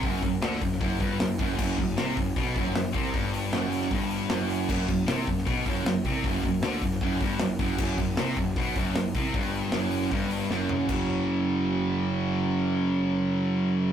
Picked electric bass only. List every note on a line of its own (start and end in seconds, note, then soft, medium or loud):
0.03 0.21 F#1 loud
0.22 0.41 F#1 medium
0.41 0.60 D2 loud
0.62 0.80 F#1 medium
0.81 0.99 F#1 loud
1.00 1.19 G1 loud
1.20 1.38 F#1 medium
1.40 1.58 F#1 loud
1.59 1.77 F#1 medium
1.78 1.96 F#1 medium
1.98 2.16 C2 loud
2.17 2.35 F#1 medium
2.36 2.54 B1 loud
2.56 2.74 F#1 loud
2.75 2.93 F#1 medium
2.94 3.13 C2 loud
3.14 3.50 G1 loud
3.53 3.89 F#1 loud
3.91 4.27 G1 loud
4.30 4.66 F#1 loud
4.69 4.87 F#1 loud
4.88 5.07 F#1 medium
5.08 5.26 C2 loud
5.27 5.45 F#1 medium
5.47 5.65 B1 medium
5.66 5.84 F#1 loud
5.85 6.03 F#1 medium
6.05 6.23 C2 loud
6.24 6.42 F#1 medium
6.43 6.61 F#1 medium
6.62 6.80 D2 loud
6.82 7.00 F#1 medium
7.01 7.20 F#1 loud
7.21 7.39 G1 loud
7.39 7.58 F#1 medium
7.59 7.77 F#1 loud
7.78 7.97 F#1 loud
7.98 8.16 F#1 medium
8.17 8.35 C2 loud
8.37 8.55 F#1 medium
8.56 8.74 B1 medium
8.76 8.94 F#1 loud
8.94 9.13 F#1 medium
9.15 9.33 C2 loud
9.34 9.70 G1 loud
9.73 10.09 F#1 loud
10.11 10.47 G1 medium
10.50 10.86 F#1 loud
10.88 13.93 F#1 medium